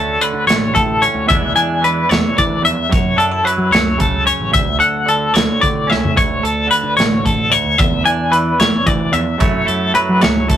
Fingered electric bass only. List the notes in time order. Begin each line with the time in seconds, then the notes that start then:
Already playing: D2
0.33 D3
0.47 A1
1.14 D2
1.30 E2
1.42 D2
1.55 E3
2.10 E2
2.38 E3
2.64 F2
2.92 F#2
3.17 F#2
3.58 F#3
3.70 C#2
4.40 A1
4.54 D2
4.67 C#2
4.80 D3
5.34 D2
5.63 D3
5.89 C#2
6.17 D2
6.43 D2
6.83 D3
6.97 A1
7.64 D2
7.79 E2
7.91 D2
8.05 E3
8.60 E2
8.86 E3
9.13 F2
9.40 F#2
9.68 F#2
10.09 F#3
10.23 C#2